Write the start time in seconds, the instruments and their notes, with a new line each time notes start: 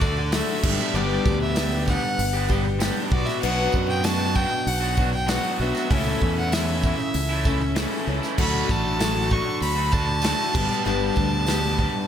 Already playing: fingered electric bass D2, fiddle D5
0.01 overdriven electric guitar D3 A3 D4 F#4, twelve-string acoustic guitar A4, kick, tambourine
0.17 muted overdriven electric guitar stroke, tambourine
0.32 overdriven electric guitar D3 A3 D4 F#4, twelve-string acoustic guitar F#3 A4, fiddle E5, snare, open hi-hat, tambourine
0.49 tambourine
0.63 fingered electric bass G1, overdriven electric guitar G2 D3 G3 B3 D4 G4, kick, tambourine, crash
0.78 overdriven electric guitar G3 B3 D4 G4, snare, tambourine
0.94 fingered electric bass G1, overdriven electric guitar G2 D3 G3 B3 D4 G4, fiddle D5, tambourine
1.11 tambourine
1.25 fingered electric bass D2, twelve-string acoustic guitar G3 B3 D4 G4, kick, tambourine
1.42 fiddle E5
1.56 overdriven electric guitar G2 D3 G3 B3 D4 G4, snare, open hi-hat, tambourine
1.72 tambourine
1.87 overdriven electric guitar G3 B3 D4 G4, fiddle F#5, kick, tambourine
2.03 muted overdriven electric guitar stroke
2.19 fingered electric bass G1, open hi-hat
2.34 overdriven electric guitar G3 B3 D4 G4
2.48 overdriven electric guitar G3 B3 D4 G4, kick, tambourine
2.64 muted overdriven electric guitar stroke, tambourine
2.79 overdriven electric guitar G2 D3 G3 B3 D4 G4, snare, open hi-hat, tambourine
2.95 tambourine
3.10 fingered electric bass B1, overdriven electric guitar B2 F#3 B3 D4 F#4, fiddle D5, kick, tambourine
3.26 overdriven electric guitar B3 D4 F#4, fiddle E5, snare, tambourine
3.41 fingered electric bass B1, overdriven electric guitar B2 F#3 B3 D4 F#4, fiddle F#5, crash, tambourine
3.57 tambourine
3.72 fingered electric bass F#2, twelve-string acoustic guitar D4 F#4, kick, tambourine
3.77 twelve-string acoustic guitar B3
3.89 fiddle G5
4.03 overdriven electric guitar B2 F#3 B3 D4 F#4, fiddle A5, snare, open hi-hat, tambourine
4.19 tambourine
4.34 overdriven electric guitar F#3 B3 D4 F#4, fiddle G5, kick, tambourine
4.50 muted overdriven electric guitar stroke
4.67 fingered electric bass B1, fiddle F#5, open hi-hat
4.81 overdriven electric guitar B3 D4 F#4
4.96 overdriven electric guitar F#3 B3 D4 F#4, kick, tambourine
5.12 fiddle G5, muted overdriven electric guitar stroke, tambourine
5.27 overdriven electric guitar B2 F#3 B3 D4 F#4, fiddle F#5, snare, open hi-hat, tambourine
5.44 tambourine
5.58 fingered electric bass B1, overdriven electric guitar F#3 B3 D4 F#4, fiddle E5, tambourine
5.74 overdriven electric guitar B3 D4 F#4, snare, tambourine
5.88 fingered electric bass C#2, overdriven electric guitar C#3 E3 A3 C#4 E4, twelve-string acoustic guitar A4, kick, open hi-hat, tambourine
6.06 tambourine
6.21 fingered electric bass E2, twelve-string acoustic guitar A3 C#4 A4, kick
6.36 fiddle F#5, tambourine
6.52 overdriven electric guitar C#3 E3 A3 C#4 E4, twelve-string acoustic guitar A4, fiddle E5, snare, open hi-hat, tambourine
6.68 tambourine
6.83 overdriven electric guitar E3 A3 C#4 E4, kick, tambourine
6.98 muted overdriven electric guitar stroke, tambourine
7.14 fingered electric bass C#2, open hi-hat, tambourine
7.29 overdriven electric guitar A3 C#4 E4, tambourine
7.45 overdriven electric guitar E3 A3 C#4 E4, twelve-string acoustic guitar A4, kick, tambourine
7.61 muted overdriven electric guitar stroke, tambourine
7.76 overdriven electric guitar C#3 E3 A3 C#4 E4, twelve-string acoustic guitar A4, snare, open hi-hat, tambourine
7.93 tambourine
8.06 fingered electric bass C#2, overdriven electric guitar E3 A3 C#4 E4, twelve-string acoustic guitar A4, tambourine
8.21 overdriven electric guitar A3 C#4 E4, snare, tambourine
8.37 fingered electric bass D2, overdriven electric guitar D3 A3 D4 F#4, twelve-string acoustic guitar F#3, fiddle B5, kick, tambourine, crash
8.55 tambourine
8.68 fingered electric bass A1, twelve-string acoustic guitar A3 D4 F#4, fiddle A5, kick, tambourine
8.98 overdriven electric guitar D3 A3 D4 F#4, twelve-string acoustic guitar F#3, snare, open hi-hat, tambourine
9.16 tambourine
9.30 overdriven electric guitar D3 A3 D4 F#4, fiddle C#6, kick, tambourine
9.45 muted overdriven electric guitar stroke
9.61 fingered electric bass D2, fiddle B5, open hi-hat
9.75 overdriven electric guitar A3 D4 F#4
9.90 overdriven electric guitar D3 A3 D4 F#4, fiddle A5, kick, tambourine
10.07 muted overdriven electric guitar stroke, tambourine
10.22 overdriven electric guitar D3 A3 D4 F#4, twelve-string acoustic guitar F#3, snare, open hi-hat, tambourine
10.38 tambourine
10.52 fingered electric bass G1, overdriven electric guitar G2 D3 G3 B3 D4 G4, kick, tambourine, crash
10.69 overdriven electric guitar G3 B3 D4 G4, snare, tambourine
10.84 fingered electric bass G1, overdriven electric guitar G2 D3 G3 B3 D4 G4, fiddle A5, tambourine
11.01 tambourine
11.16 fingered electric bass D2, twelve-string acoustic guitar G3 B3 D4 G4, kick, tambourine
11.46 overdriven electric guitar G2 D3 G3 B3 D4 G4, snare, open hi-hat, tambourine
11.63 tambourine
11.78 overdriven electric guitar G3 B3 D4 G4, kick
11.94 muted overdriven electric guitar stroke